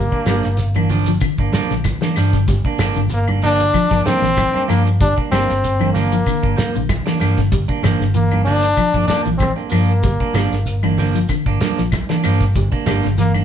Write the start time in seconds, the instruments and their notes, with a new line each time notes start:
Already playing: clean electric guitar G3, trombone A#3
0.12 clean electric guitar A#3 D4, kick, closed hi-hat
0.26 fingered electric bass G1, clean electric guitar F3 G3 A#3 D4, snare, closed hi-hat, high conga, claves, shekere
0.43 fingered electric bass G1, snare, closed hi-hat, shekere
0.57 snare, closed hi-hat, high conga, shekere
0.74 clean electric guitar E3 A#3 D4, closed hi-hat, high conga, claves
0.89 clean electric guitar F3 D4, muted clean electric guitar stroke, open hi-hat, low conga, shekere
1.06 clean electric guitar F3, closed hi-hat, low conga, shekere
1.20 clean electric guitar D3, kick, closed hi-hat, high conga, claves, shekere
1.38 fingered electric bass G1, clean electric guitar A#3 D4, kick, closed hi-hat
1.53 clean electric guitar F3 A#3 D4, snare, closed hi-hat, high conga, shekere
1.70 fingered electric bass A#1, clean electric guitar D3, snare, closed hi-hat, shekere
1.84 kick, snare, closed hi-hat, high conga, claves, shekere
2.01 clean electric guitar E3 A#3 D4, snare, closed hi-hat
2.16 fingered electric bass G2, clean electric guitar F3 D4, muted clean electric guitar stroke, snare, open hi-hat, claves, shekere
2.33 clean electric guitar D3, kick, snare, closed hi-hat, shekere
2.48 fingered electric bass G1, clean electric guitar G3, kick, snare, closed hi-hat, high conga, low conga, shekere
2.64 clean electric guitar A#3 D4, kick, closed hi-hat
2.78 fingered electric bass G1, clean electric guitar F3 A#3 D4, muted clean electric guitar stroke, snare, closed hi-hat, high conga, claves, shekere
2.96 fingered electric bass G1, clean electric guitar D3, shekere
3.10 trombone A#3, muted clean electric guitar stroke, closed hi-hat, high conga, shekere
3.28 clean electric guitar A#3 D4, closed hi-hat, high conga, claves
3.42 clean electric guitar F3 A#3 D4, trombone D4, open hi-hat, low conga, shekere
3.59 closed hi-hat, low conga, shekere
3.74 clean electric guitar F3, kick, closed hi-hat, high conga, claves, shekere
3.91 fingered electric bass G1, clean electric guitar F3 A#3 D4, kick, snare, closed hi-hat
4.05 clean electric guitar F3 A#3 D4, trombone C4, snare, closed hi-hat, high conga, shekere
4.22 fingered electric bass A#1, clean electric guitar E3, snare, closed hi-hat, shekere
4.37 kick, snare, closed hi-hat, high conga, claves, shekere
4.53 clean electric guitar A#3 D4, closed hi-hat, high conga
4.68 fingered electric bass G2, clean electric guitar F3 A#3 D4, trombone A#3, open hi-hat, claves, shekere
4.87 closed hi-hat, shekere
5.01 fingered electric bass G1, clean electric guitar G3, trombone D4, kick, closed hi-hat, high conga, low conga, shekere
5.16 clean electric guitar A#3 D4, kick, closed hi-hat
5.31 fingered electric bass G1, clean electric guitar F3 G3 A#3 D4, trombone C4, snare, closed hi-hat, high conga, claves, shekere
5.50 fingered electric bass G1, snare, closed hi-hat, shekere
5.64 closed hi-hat, high conga, shekere
5.79 clean electric guitar E3 A#3 D4, closed hi-hat, high conga, claves
5.93 clean electric guitar F3 A#3 D4, trombone A#3, snare, open hi-hat, low conga, shekere
6.12 clean electric guitar F3, closed hi-hat, shekere
6.26 clean electric guitar D3, kick, closed hi-hat, claves, shekere
6.43 fingered electric bass G1, clean electric guitar A#3 D4, kick, closed hi-hat
6.57 clean electric guitar F3 A#3, muted fingered electric bass stroke, snare, closed hi-hat, high conga, shekere
6.75 fingered electric bass A#1, clean electric guitar D3, closed hi-hat, shekere
6.89 kick, closed hi-hat, high conga, claves, shekere
7.06 clean electric guitar E3 A#3 D4, snare, closed hi-hat
7.20 fingered electric bass G2, clean electric guitar F3 A#3 D4, snare, open hi-hat, claves, shekere
7.38 clean electric guitar D3, kick, snare, closed hi-hat, shekere
7.52 fingered electric bass G1, clean electric guitar G3, kick, closed hi-hat, high conga, low conga, shekere
7.68 clean electric guitar A#3 D4, kick, closed hi-hat
7.83 fingered electric bass G1, clean electric guitar E3 F3 A#3 D4, snare, closed hi-hat, high conga, claves, shekere
8.00 fingered electric bass G1, clean electric guitar D3, snare, shekere
8.14 clean electric guitar E3, trombone A#3, closed hi-hat, high conga, shekere
8.31 clean electric guitar A#3 D4, closed hi-hat, high conga, claves
8.44 clean electric guitar F3 A#3 D4, trombone D4, open hi-hat, low conga, shekere
8.62 closed hi-hat, shekere
8.77 clean electric guitar F3, kick, closed hi-hat, claves, shekere
8.94 fingered electric bass G1, clean electric guitar F3 A#3 D4, kick, closed hi-hat
9.07 clean electric guitar F3 A#3 D4, trombone D4, muted fingered electric bass stroke, snare, closed hi-hat, high conga, shekere
9.25 fingered electric bass A#1, clean electric guitar E3, closed hi-hat, shekere
9.38 trombone C4, kick, closed hi-hat, claves, shekere
9.42 high conga
9.56 clean electric guitar A#3 D4, closed hi-hat
9.69 fingered electric bass G2, clean electric guitar F3 A#3 D4, trombone A#3, open hi-hat, claves, shekere
9.88 closed hi-hat, shekere
10.03 fingered electric bass G1, clean electric guitar G3, kick, closed hi-hat, high conga, low conga, shekere
10.20 clean electric guitar A#3 D4, kick, closed hi-hat
10.34 fingered electric bass G1, clean electric guitar F3 G3 A#3 D4, snare, closed hi-hat, high conga, claves, shekere
10.51 fingered electric bass G1, snare, closed hi-hat, shekere
10.65 closed hi-hat, high conga, shekere
10.83 clean electric guitar E3 A#3 D4, closed hi-hat, high conga, claves
10.98 clean electric guitar F3 A#3 D4, snare, open hi-hat, low conga, shekere
11.15 clean electric guitar F3, closed hi-hat, shekere
11.29 clean electric guitar D3, kick, closed hi-hat, high conga, claves, shekere
11.46 fingered electric bass G1, clean electric guitar A#3 D4, kick, closed hi-hat
11.61 clean electric guitar F3 A#3 D4, snare, closed hi-hat, high conga, shekere
11.78 fingered electric bass A#1, clean electric guitar F3, snare, closed hi-hat, shekere
11.92 kick, snare, closed hi-hat, high conga, claves, shekere
12.09 clean electric guitar E3 A#3 D4, snare, closed hi-hat
12.23 fingered electric bass G2, clean electric guitar F3 A#3 D4, open hi-hat, claves, shekere
12.40 kick, snare, closed hi-hat, shekere
12.55 fingered electric bass G1, clean electric guitar G3, kick, closed hi-hat, high conga, low conga, shekere
12.72 clean electric guitar A#3 D4, kick, closed hi-hat
12.86 fingered electric bass G1, clean electric guitar F3 G3 A#3 D4, snare, closed hi-hat, high conga, claves, shekere
13.03 fingered electric bass G1, clean electric guitar D3, snare, shekere
13.18 clean electric guitar E3, trombone A#3, snare, closed hi-hat, shekere
13.34 clean electric guitar A#3 D4, closed hi-hat, high conga, claves